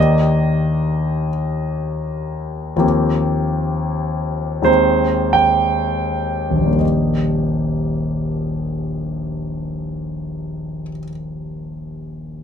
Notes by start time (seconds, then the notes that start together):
Already playing: D#2 D#3 A#3 D4 G4 D#5
2.76 D#2 F3 A#3 C4 G4
4.62 D#2 D#3 G#3 C4 D#4 C5
5.33 G5
6.50 D#1
6.55 A#1
6.61 G3
6.66 A#3
6.70 D#4
6.76 G4 D#5